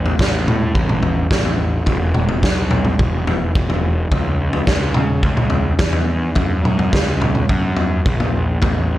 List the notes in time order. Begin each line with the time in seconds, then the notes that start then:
Already playing: A1
0.06 floor tom
0.19 A1, kick, snare
0.47 A2, floor tom, mid tom
0.75 A1, kick
0.89 mid tom
1.03 floor tom
1.31 A1, kick, snare
1.45 floor tom
1.86 E1, kick, floor tom
2.14 E1, mid tom
2.29 floor tom
2.43 B1, kick, snare
2.71 floor tom, mid tom
2.85 mid tom
2.99 E1, kick
3.27 floor tom
3.55 E1, kick
3.70 floor tom
4.11 C#2, kick, floor tom
4.53 floor tom
4.67 C#2, kick, snare
4.94 C#3, floor tom, mid tom
5.23 C#2, kick
5.37 mid tom
5.50 floor tom
5.79 E2, kick, snare
5.93 floor tom
6.35 F#2, kick, floor tom
6.63 F#2, mid tom
6.79 floor tom
6.93 C#2, kick, snare
7.22 floor tom, mid tom
7.35 mid tom
7.49 F#2, kick
7.77 floor tom
8.06 A#1, kick
8.20 floor tom
8.62 A1, kick, floor tom